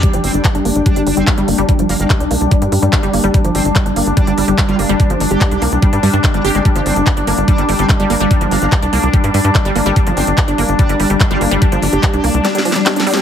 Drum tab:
HH |x--x--o--x--x--x--o--x--x--x--o--x--x--x--o--x--|x--x--o--x--x--x--o--x--x--x--o--x--x--x--o--x--|x--x--o--x--x--x--o--x--x--x--o--x--x--x--o--x--|x--x--o--x--x--x--o--x--x--x--o--x--x--x--o--x--|
CP |------------x-----------------------x-----------|------------x-----------------------x-----------|------------x-----------------------x-----------|------------x-----------------------x-----------|
SD |------------------------------------------------|------------------------------------------------|------------------------------------------------|------------------------------------------------|
BD |o-----------o-----------o-----------o-----------|o-----------o-----------o-----------o-----------|o-----------o-----------o-----------o-----------|o-----------o-----------o-----------o-----------|

HH |x--x--o--x--x--x--o--x--x--x--o--x--x--x--o--x--|x--x--o--x--x--x--o--x--x--x--o--x--x--x--o--x--|x--x--o--x--x--x--o--x--x--x--o--x--x--x--o--x--|x--x--o--x--x--x--o--x--x--x--o--x--x--x--o--x--|
CP |------------x-----------------------x-----------|------------x-----------------------x-----------|------------x-----------------------x-----------|------------x-----------------------x-----------|
SD |------------------------------------------------|------------------------------------------------|------------------------------------------------|------------------------o---o---o---o---o---o---|
BD |o-----------o-----------o-----------o-----------|o-----------o-----------o-----------o-----------|o-----------o-----------o-----------o-----------|o-----------o-----------------------------------|